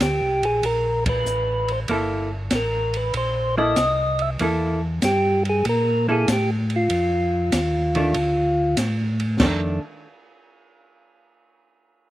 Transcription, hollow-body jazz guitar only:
1.89 A#3 E4 A4
3.58 A#3 E4 A4
4.41 A#3 E4 A4
6.09 A#3 E4 A4
7.96 D#3 A3 D4
9.40 D#3 A3 D4

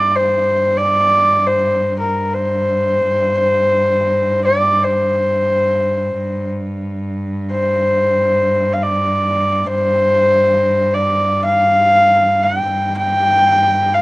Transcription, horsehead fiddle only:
Already playing: D5
0.16 C5
0.77 D5
1.47 C5
1.99 A#4
2.34 C5
4.45 D5
4.84 C5
7.51 C5
8.73 F5
8.82 D5
9.66 C5
10.94 D5
11.45 F5
12.43 G5
12.97 G5
13.94 F5

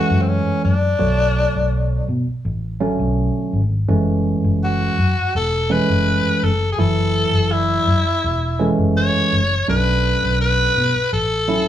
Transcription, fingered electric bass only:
0.10 F#2
0.65 F#2
1.01 B1
1.55 B1
2.09 B2
2.27 muted fingered electric bass stroke
2.45 A1
2.99 B1
3.53 G#1
3.89 F#1
4.44 F#1
4.99 F#2
5.17 muted fingered electric bass stroke
5.35 E1
5.90 F#1
6.43 F#1
6.79 F#1
7.33 F#1
7.87 F#2
8.06 muted fingered electric bass stroke
8.24 E1
8.78 F#1
9.32 F#1
9.68 B1
10.23 B1
10.77 B2
10.95 muted fingered electric bass stroke
11.13 A1

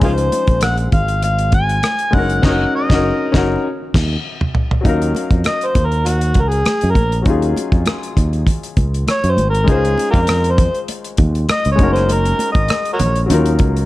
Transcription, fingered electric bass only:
0.02 C#2
0.48 A#1
0.93 G#1
2.14 F#1
2.44 F#1
2.91 F#1
3.35 F#1
3.95 D#2
4.85 D#2
5.31 F2
5.75 D#2
6.36 C#2
6.83 F#2
6.96 A#1
7.26 D#2
7.72 F2
8.17 D#2
8.77 C#2
9.24 F#2
9.38 G#1
9.68 C#2
10.14 F2
11.18 D#2
11.66 C#2
11.79 F#1
12.55 G#1
13.01 A#1
13.31 D#2
13.60 C#2

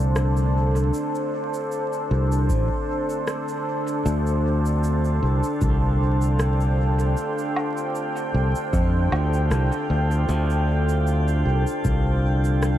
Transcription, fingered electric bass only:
Already playing: C2
2.11 C2
2.50 A1
4.06 D2
5.23 C2
5.61 C2
8.34 C2
8.73 F2
9.12 D2
9.51 C2
9.90 D2
10.29 D2
11.45 C2
11.85 C2

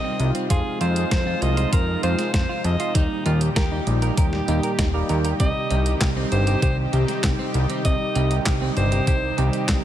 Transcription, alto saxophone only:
Already playing: D#5
0.50 G#4
0.81 C5
1.11 C5
1.42 D#5
1.73 A#4
2.03 C5
2.34 C5
2.65 D#5
2.95 D#4
3.26 F4
3.56 G4
4.18 G4
5.40 D#5
6.32 C5
6.63 C5
6.93 G4
7.85 D#5
8.77 C5
9.08 C5
9.38 G4

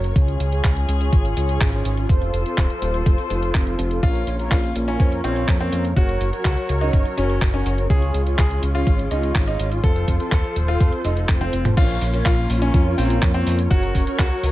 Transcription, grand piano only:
4.03 F4
4.52 F4
4.88 C#4
5.24 C4
5.60 C4
5.97 F#4
6.45 F#4
6.81 D#4
7.17 C#4
7.54 C#4
7.90 G#4
8.38 G#4
8.75 F4
9.11 D#4
9.47 D#4
9.84 A4
10.32 A4
10.68 F4
11.05 D#4
11.41 C4
11.77 F4
12.25 F4
12.62 C#4
12.98 C4
13.34 C4
13.70 F#4
14.19 F#4

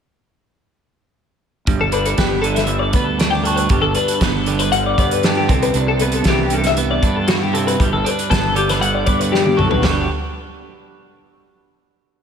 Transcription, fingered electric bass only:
1.67 G1
2.18 G1
2.94 D2
3.71 G1
4.21 G1
4.98 G2
5.49 C2
5.75 C2
6.26 C2
7.03 G2
7.80 G1
8.32 G1
9.07 G2
9.60 B1
9.83 G1

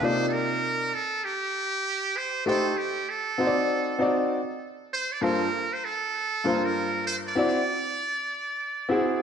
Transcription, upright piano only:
Already playing: A4 F5
0.01 C3 A#3 D#4 F4 D5
2.46 A3 D#4 G4 C5
3.38 C4 D#4 F#4 C5
3.47 D5
3.99 C4 D#4 F#4 D5
5.21 G2 A#3 F4 A4 C5
6.44 G2 A#3 F4 A#4 C5
7.35 C4 E4 F#4 D5
8.89 C4 E4 F#4 G#4

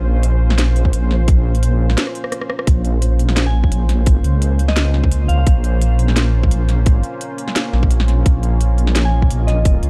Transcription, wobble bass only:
Already playing: A#1
0.93 A#1
2.67 A#1
3.72 A#1
4.08 A1
4.24 C#2
5.29 C#2
5.47 A#1
6.52 A#1
7.73 A#1
8.26 A#1
9.31 A#1
9.83 C#2

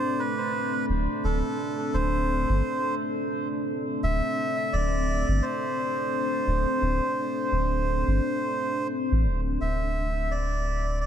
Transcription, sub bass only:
0.89 D1
1.24 D1
1.94 D1
2.49 G1
4.03 D1
4.73 D1
5.28 G1
6.47 D1
6.82 D1
7.52 D1
8.07 G1
9.12 A1
9.26 D1
9.61 D1

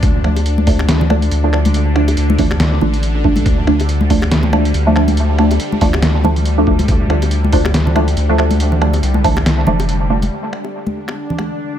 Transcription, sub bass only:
0.03 D2
1.31 D2
2.17 D2
2.81 A1
3.46 D2
4.74 D2
5.81 D2
6.67 D2
6.88 D2
8.17 D2
9.03 C2
9.67 F1

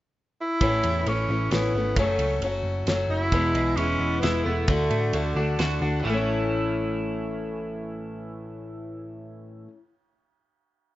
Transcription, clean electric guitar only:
3.33 E2
3.55 G#3
3.78 E3
4.00 B3
4.23 E4
4.46 B3
4.69 D3
4.90 A3
5.14 D3
5.36 D4
5.59 F#4
5.82 D4
6.03 A2 E3 A3 C#4 E4

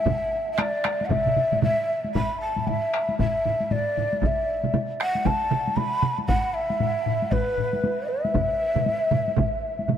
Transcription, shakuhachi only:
Already playing: E5
0.52 E5
0.58 D5
1.05 F#5
1.10 E5
1.63 E5
2.15 B5
2.41 A5
2.68 E5
3.19 E5
3.71 D5
4.26 E5
5.02 F#5
5.26 A5
5.76 B5
6.28 F#5
6.54 E5
7.32 B4
8.08 E5

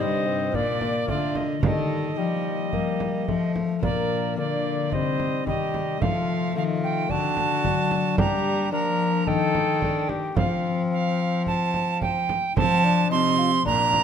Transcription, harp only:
Already playing: C3 C4 D#5
0.00 G2 D#4
0.51 A#2 A#3 F4
1.05 D3 A#3 F4
1.59 D#3 A#3 D#4 G4
2.14 A#3 D#4 G4
2.18 F3
2.73 G3
3.28 F3
3.79 A#2 A#3 D4 F4
4.34 D3 A#3 D4 F4
4.89 C3 C4 D#4
5.44 D#3 C4 D#4
5.97 F3 A3 C4
6.52 D#3 A3 C4
7.05 A3 C4 D4
7.10 D3
7.63 F#3
8.15 G3 A#3 D4
8.70 F3 A#3 D4
9.24 D#3 A#3 D#4
10.34 F3 A3 C4
12.56 F3
13.11 C3 C4 F4
13.65 A#2

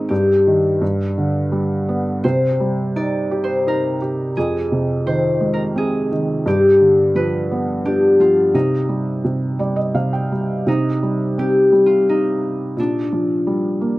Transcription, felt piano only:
Already playing: G#2 D#3 C4 D#4
0.11 G2
0.47 D#3
0.82 G2
1.18 D3
1.52 G3
1.89 B3
2.25 C3
2.60 G3
2.96 D#4
3.31 G4
3.67 D#4
4.02 G4
4.37 F2
4.72 C3
5.06 D#3
5.40 G#3
5.76 C4
6.12 D#3
6.46 G2
6.80 D3
7.15 F3
7.51 B3
7.86 D4
8.20 F3
8.54 C3
8.89 G3
9.24 C3
9.59 G3 D5
9.76 D#5
9.94 C3 F5
10.13 G5
10.32 G3
10.67 C3
11.03 G3
11.38 C4
11.72 G3
12.77 A#2
13.13 F3
13.47 G3
13.81 A#3

